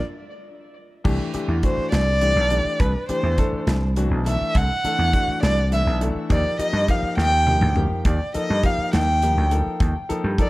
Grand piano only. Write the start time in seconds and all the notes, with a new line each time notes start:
1.04 E3 A3 D4 G4
1.34 E3 A3 D4 G4
1.63 E3 A3 D4 F#4
2.21 E3 A3 D4 G4
2.50 E3 A3 D4 G4
3.09 E3 A3 D4 G4
3.38 E3 A3 D4 A4
3.97 E3 A3 D4 F#4
4.26 E3 A3 D4 A4
4.84 E3 A3 D4 A4
5.13 E3 A3 D4 F#4
5.72 E3 A3 D4 E4
6.01 E3 A3 D4 A4
6.29 F3 A#3 D#4 G4
6.59 F3 A#3 D#4 G4
6.88 F3 A#3 D#4 G4
7.47 F3 A#3 D#4 G4
7.76 F3 A#3 D#4 G4
8.34 F3 A#3 D#4 A4
8.64 F3 A#3 D#4 G4
9.23 F3 A#3 D#4 G4
9.52 F3 A#3 D#4 A4
10.09 F3 A#3 D#4 A4
10.39 F3 A#3 D#4 A4